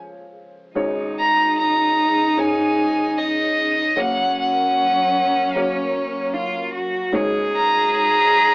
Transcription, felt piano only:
0.00 0.72 C#2 soft
0.00 0.71 C#3 soft
0.00 0.11 F3 medium
0.00 0.11 C#4 medium
0.00 0.11 G#4 medium
0.00 0.11 C#5 medium
0.75 3.93 G#1 medium
0.75 3.93 G#2 medium
0.75 1.73 G#3 medium
0.75 1.73 C#4 medium
0.75 1.73 D#4 medium
0.75 1.74 C#5 medium
2.37 3.34 G#3 medium
2.37 3.34 C#4 medium
2.37 3.34 D#4 medium
2.37 3.34 C#5 medium
3.96 7.11 F#1 medium
3.96 7.10 F#2 medium
3.96 4.93 A#3 medium
3.96 4.94 C#4 medium
3.96 4.94 F#4 medium
3.96 4.94 C#5 medium
5.55 6.52 A#3 medium
5.55 6.52 C#4 medium
5.55 6.52 F#4 medium
5.55 6.52 C#5 medium
7.12 8.54 G#1 medium
7.12 8.54 G#2 medium
7.12 8.10 G#3 medium
7.12 8.10 C#4 medium
7.12 8.10 D#4 medium
7.12 8.10 C#5 medium

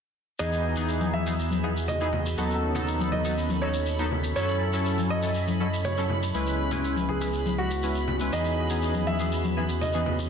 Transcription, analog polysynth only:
0.39 0.74 E3 medium
0.39 0.74 B3 medium
0.39 0.74 D#4 medium
0.39 0.74 G#4 medium
0.77 1.23 E3 medium
0.77 1.23 B3 medium
0.77 1.23 D#4 medium
0.77 1.23 G#4 medium
1.26 1.33 E3 medium
1.26 1.33 B3 medium
1.26 1.33 D#4 medium
1.26 1.33 G#4 medium
1.63 1.70 E3 medium
1.63 1.70 B3 medium
1.63 1.70 D#4 medium
1.63 1.70 G#4 medium
2.00 2.07 E3 medium
2.00 2.07 B3 medium
2.00 2.07 D#4 medium
2.00 2.07 G#4 loud
2.38 2.72 F#3 medium
2.38 2.72 B3 medium
2.38 2.72 D#4 medium
2.38 2.72 A4 medium
2.75 3.22 F#3 medium
2.75 3.21 B3 medium
2.75 3.21 D#4 medium
2.75 3.22 A4 loud
3.24 3.31 F#3 medium
3.24 3.31 B3 medium
3.24 3.31 D#4 medium
3.24 3.31 A4 medium
3.62 3.69 F#3 medium
3.62 3.69 B3 medium
3.62 3.69 D#4 medium
3.62 3.69 A4 medium
3.99 4.06 F#3 medium
3.99 4.06 B3 medium
3.99 4.06 D#4 medium
3.99 4.06 A4 medium
4.36 4.70 F#3 medium
4.36 4.70 C#4 medium
4.36 4.70 E4 medium
4.36 4.70 A4 medium
4.73 5.20 F#3 medium
4.73 5.20 C#4 medium
4.73 5.20 E4 medium
4.73 5.20 A4 loud
5.23 5.30 F#3 medium
5.23 5.30 C#4 medium
5.23 5.30 E4 medium
5.23 5.30 A4 medium
5.60 5.67 F#3 medium
5.60 5.67 C#4 medium
5.60 5.67 E4 medium
5.60 5.67 A4 medium
5.97 6.04 F#3 medium
5.97 6.04 C#4 medium
5.97 6.04 E4 medium
5.97 6.04 A4 loud
6.34 6.69 G#3 medium
6.34 6.69 C#4 medium
6.34 6.69 E4 medium
6.34 6.69 B4 medium
6.72 7.18 G#3 medium
6.72 7.18 C#4 medium
6.72 7.18 E4 medium
6.72 7.18 B4 loud
7.21 7.28 G#3 medium
7.21 7.28 C#4 medium
7.21 7.28 E4 medium
7.21 7.28 B4 medium
7.83 7.94 G#3 medium
7.83 7.94 C#4 medium
7.83 7.94 E4 medium
7.83 7.94 B4 medium
8.20 8.31 G#3 medium
8.20 8.31 C#4 medium
8.20 8.31 E4 medium
8.20 8.31 B4 loud
8.33 8.67 E3 medium
8.33 8.67 B3 medium
8.33 8.67 D#4 medium
8.33 8.67 G#4 medium
8.70 9.17 E3 medium
8.70 9.17 B3 medium
8.70 9.17 D#4 medium
8.70 9.17 G#4 medium
9.20 9.26 E3 medium
9.20 9.26 B3 medium
9.20 9.26 D#4 medium
9.20 9.26 G#4 medium
9.57 9.64 E3 medium
9.57 9.64 B3 medium
9.57 9.64 D#4 medium
9.57 9.64 G#4 medium
9.94 10.01 E3 medium
9.94 10.01 B3 medium
9.94 10.01 D#4 medium
9.94 10.01 G#4 loud

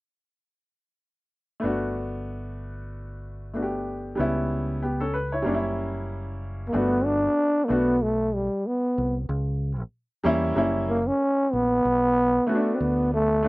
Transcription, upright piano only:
1.60 3.49 A3 medium
1.60 3.50 B3 medium
1.60 3.51 D4 medium
1.65 3.52 F#4 medium
3.54 4.18 A3 soft
3.54 4.16 B3 soft
3.54 4.19 D4 soft
3.54 3.63 F#4 soft
3.63 4.22 G4 medium
4.15 5.41 G3 medium
4.15 4.80 B3 medium
4.15 4.81 C#4 medium
4.20 4.82 E4 medium
4.83 5.00 B3 soft
4.83 5.00 G4 medium
5.00 5.14 C#4 soft
5.00 5.13 A4 medium
5.14 5.31 B4 medium
5.32 5.53 E4 medium
5.32 5.63 C#5 medium
5.42 6.69 G3 medium
5.42 6.70 A#3 medium
5.42 6.71 C#4 medium
5.48 5.54 D4 medium
5.54 6.75 E4 medium
6.73 7.63 A3 medium
6.73 7.64 B3 soft
6.73 7.64 D4 medium
6.73 7.65 F#4 medium
7.68 7.93 A3 medium
7.68 7.93 B3 medium
7.68 7.93 D4 medium
7.68 7.94 F#4 medium
10.24 10.54 G3 medium
10.24 10.55 A#3 medium
10.24 10.55 C#4 medium
10.24 10.56 E4 medium
10.55 10.95 G3 medium
10.55 10.96 A#3 medium
10.55 10.96 C#4 medium
10.55 10.97 E4 medium
12.47 13.38 A3 medium
12.47 13.38 B3 medium
12.47 12.56 C#4 soft
12.47 13.39 F#4 medium
12.55 13.42 D4 medium
13.43 13.48 A3 medium
13.43 13.48 B3 medium
13.43 13.48 D4 medium

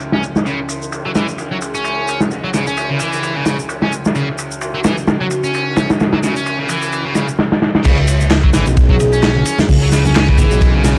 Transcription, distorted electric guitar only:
0.13 0.23 C#4 medium
0.46 0.59 C#3 medium
1.05 1.10 F#3 medium
1.15 1.26 E3 medium
1.51 1.56 F#3 loud
1.75 2.19 C#4 medium
2.44 2.49 F#3 loud
2.54 2.65 C#3 medium
2.67 2.89 C#4 medium
2.90 2.99 C#3 medium
3.00 3.35 E3 medium
3.36 3.44 C#3 loud
3.46 3.57 C#3 medium
3.83 3.92 C#4 medium
4.16 4.28 C#3 medium
4.75 4.80 F#3 medium
4.85 4.95 E3 medium
5.21 5.26 F#3 loud
5.44 5.89 C#4 medium
6.13 6.18 F#3 loud
6.24 6.34 C#3 medium
6.36 6.58 C#4 medium
6.59 6.68 C#3 loud
6.70 7.04 E3 medium
7.05 7.14 C#3 loud
7.16 7.26 C#3 medium
7.85 7.97 C#3 medium
8.44 8.49 F#3 medium
8.54 8.65 E3 loud
8.90 8.95 F#3 loud
9.13 9.58 C#4 medium
9.82 9.87 F#3 loud
9.92 10.03 C#3 medium
10.05 10.27 C#4 medium
10.28 10.37 C#3 loud
10.38 10.73 E3 medium
10.75 10.83 C#3 loud
10.85 10.95 C#3 medium

